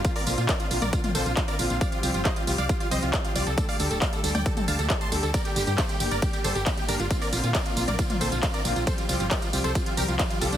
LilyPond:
<<
  \new Staff \with { instrumentName = "Supersaw synth" } { \time 4/4 \key bes \major \tempo 4 = 136 f'16 <bes' d''>16 f'16 f'16 <bes' d''>16 f'16 f'16 <bes' d''>16 f'16 f'16 <a' c''>16 f'16 f'16 <bes' d''>16 f'16 f'16 | <d'' f''>16 f'16 f'16 f'16 <c'' ees''>16 f'16 f'16 <d'' f''>16 f'16 f'16 <c'' ees''>16 f'16 f'16 f'16 <f' d''>16 a'16 | a'16 <d'' f''>16 a'16 a'16 <d'' f''>16 a'16 a'16 <d'' g''>16 a'16 a'16 <f'' a''>16 a'16 a'16 <a'' c'''>16 a'16 a'16 | <bes' d''>16 g'16 g'16 g'16 <a' c''>16 g'16 g'16 <bes' d''>16 g'16 g'16 <a' c''>16 g'16 g'16 g'16 <d' bes'>16 f'16 |
f'16 <bes' d''>16 f'16 f'16 <bes' d''>16 f'16 f'16 <bes' d''>16 f'16 f'16 <a' c''>16 f'16 f'16 <bes' d''>16 f'16 f'16 | <a' c''>16 f'16 f'16 f'16 <g' bes'>16 f'16 f'16 <a' c''>16 f'16 f'16 <g' bes'>16 f'16 f'16 f'16 <f' a'>16 d'16 | }
  \new Staff \with { instrumentName = "String section" } { \time 4/4 \key bes \major <d bes c' f'>8 <d bes c' f'>8 <d bes c' f'>8 <d bes c' f'>8 <d bes c' f'>8 <d bes c' f'>8 <d bes c' f'>8 <d bes c' f'>8 | <f g c' g'>8 <f g c' g'>8 <f g c' g'>8 <f g c' g'>8 <f g c' g'>8 <f g c' g'>8 <f g c' g'>8 <f g c' g'>8 | <d g a g'>8 <d g a g'>8 <d g a g'>8 <d g a g'>8 <d g a g'>8 <d g a g'>8 <d g a g'>8 <d g a g'>8 | <d g bes g'>8 <d g bes g'>8 <d g bes g'>8 <d g bes g'>8 <d g bes g'>8 <d g bes g'>8 <d g bes g'>8 <d g bes g'>8 |
<d bes c' f'>8 <d bes c' f'>8 <d bes c' f'>8 <d bes c' f'>8 <d bes c' f'>8 <d bes c' f'>8 <d bes c' f'>8 <d bes c' f'>8 | <f g c' g'>8 <f g c' g'>8 <f g c' g'>8 <f g c' g'>8 <f g c' g'>8 <f g c' g'>8 <f g c' g'>8 <f g c' g'>8 | }
  \new Staff \with { instrumentName = "FM bass" } { \clef bass \time 4/4 \key bes \major r8 bes,,16 bes,16 r8 bes,,16 bes,,16 r8 bes,,16 bes,,16 r8 bes,,16 bes,,16 | r8 c,16 g,,16 r8 c,16 c,16 r8 c,16 c,16 r8 c,16 c,16 | r8 d,16 d,,16 r8 d,16 d,16 r8 d,16 d,16 r8 d,16 d,16 | r8 g,,16 g,16 r8 g,,16 g,,16 r8 g,,16 g,,16 r8 g,,16 g,,16 |
r8 bes,,16 bes,16 r8 bes,,16 bes,,16 r8 bes,,16 bes,,16 r8 bes,,16 bes,,16 | r8 c,16 g,,16 r8 c,16 c,16 r8 c,16 c,16 r8 c,16 c,16 | }
  \new DrumStaff \with { instrumentName = "Drums" } \drummode { \time 4/4 <hh bd tamb>16 <hho tamb>16 <hho tamb>16 <hh tamb>16 <hc hh bd tamb>16 <hh tamb>16 <hho tamb>16 <hh tamb toml>16 <hh bd tamb>16 <hh tamb toml>16 <hho tamb>16 <hh tamb>16 <hc hh bd tamb>16 <hh tamb>16 <hho tamb>16 <hh tamb>16 | <hh bd tamb>16 <hh tamb>16 <hho tamb>16 <hh tamb>16 <hc hh bd tamb>16 <hh tamb>16 <hho tamb>16 <hh tamb>16 <hh bd tamb>16 <hh tamb>16 <hho tamb>16 <hh tamb>16 <hc hh bd tamb>16 <hh tamb>16 <hho tamb>16 <hh tamb>16 | <hh bd tamb>16 <hho tamb>16 <hho tamb>16 <hh tamb>16 <hc hh bd tamb>16 <hh tamb>16 <hho tamb>16 <hh tamb toml>16 <hh bd tamb>16 <hh tamb toml>16 <hho tamb>16 <hh tamb>16 <hc hh bd tamb>16 <hh tamb>16 <hho tamb>16 <hh tamb>16 | <hh bd cymr tamb>16 <hh tamb>16 <hho tamb>16 <hh tamb>16 <hc hh bd cymr tamb>16 <hh tamb>16 <hho tamb>16 <hh tamb>16 <hh bd cymr tamb>16 <hh tamb>16 <hho tamb>16 <hh tamb>16 <hc hh bd cymr tamb>16 <hh tamb>16 <hho tamb>16 <hh tamb>16 |
<hh bd cymr tamb>16 <hho tamb>16 <hho tamb>16 <hh tamb>16 <hc hh bd cymr tamb>16 <hh tamb>16 <hho tamb>16 <hh tamb toml>16 <hh bd cymr tamb>16 <hh tamb toml>16 <hho tamb>16 <hh tamb>16 <hc hh bd cymr tamb>16 <hh tamb>16 <hho tamb>16 <hh tamb>16 | <hh bd cymr tamb>16 <hh tamb>16 <hho tamb>16 <hh tamb>16 <hc hh bd cymr tamb>16 <hh tamb>16 <hho tamb>16 <hh tamb>16 <hh bd cymr tamb>16 <hh tamb>16 <hho tamb>16 <hh tamb>16 <hc hh bd cymr tamb>16 <hh tamb>16 <hho tamb>16 <hh tamb>16 | }
>>